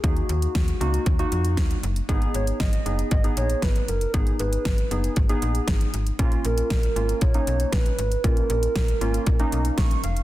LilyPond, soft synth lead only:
\new Staff \with { instrumentName = "Soft synth lead" } { \time 4/4 \key gis \dorian \tempo 4 = 117 fis'2.~ fis'8 r8 | r8 cis''8 dis''4 dis''8 cis''8 b'8 ais'8 | gis'8 b'4. r2 | r8 ais'8 ais'4 cis''4 b'4 |
ais'2.~ ais'8 r8 | }